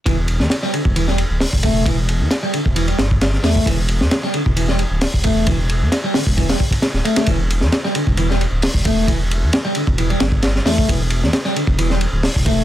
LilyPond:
<<
  \new Staff \with { instrumentName = "Clean electric guitar" } { \clef bass \time 4/4 \key e \minor \tempo 4 = 133 e16 r4 g16 d16 r16 e16 g16 r4 a8 | e16 r4 g16 d16 r16 e16 g16 r4 a8 | e16 r4 g16 d16 r16 e16 g16 r4 a8 | e16 r4 g16 d16 r16 e16 g16 r4 a8 |
e16 r4 g16 d16 r16 e16 g16 r4 a8 | e16 r4 g16 d16 r16 e16 g16 r4 a8 | e16 r4 g16 d16 r16 e16 g16 r4 a8 | }
  \new Staff \with { instrumentName = "Detuned saw bass" } { \clef bass \time 4/4 \key e \minor e,,8. e,16 r8. e,,8. r16 d,,16 r16 e,,8.~ | e,,8. e,16 r8. e,,8 r16 g,,8. r16 e,16 r16 | e,,8. e,16 r8. e,,8. r16 d,,16 r16 e,,8.~ | e,,8. e,16 r8. e,,8 r4 d,,16 r8 |
e,,8. e,16 r8. e,,8. r16 d,,16 r16 e,,8.~ | e,,8. e,16 r8. e,,8 r16 g,,8. r16 e,16 r16 | e,,8. e,16 r8. e,,8. r16 d,,16 r16 e,,8. | }
  \new DrumStaff \with { instrumentName = "Drums" } \drummode { \time 4/4 <bd cymr>8 cymr16 sn16 <cymr sn>16 sn16 cymr16 bd16 cymr16 sn16 cymr8 <hho sn>16 bd16 <bd cymr>8 | <bd cymr>8 cymr8 <cymr sn>8 cymr16 bd16 cymr16 cymr16 <cymr sn>16 bd16 <cymr sn>16 sn16 <hho sn>16 bd16 | <bd cymr>8 cymr16 sn16 <cymr sn>16 sn16 cymr16 bd16 cymr16 sn16 cymr8 <hho sn>16 bd16 <bd cymr>8 | <bd cymr>8 cymr8 <cymr sn>8 <hho sn>16 bd16 <bd cymr>16 <hho sn>16 bd16 <bd cymr>16 <cymr sn>16 sn16 cymr16 <cymr sn>16 |
<bd cymr>8 cymr16 sn16 <cymr sn>16 sn16 cymr16 bd16 cymr16 sn16 cymr8 <hho sn>16 bd16 <bd cymr>8 | <bd cymr>8 cymr8 <cymr sn>8 cymr16 bd16 cymr16 cymr16 <cymr sn>16 bd16 <cymr sn>16 sn16 <hho sn>16 bd16 | <bd cymr>8 cymr16 sn16 <cymr sn>16 sn16 cymr16 bd16 cymr16 sn16 cymr8 <hho sn>16 bd16 <bd cymr>8 | }
>>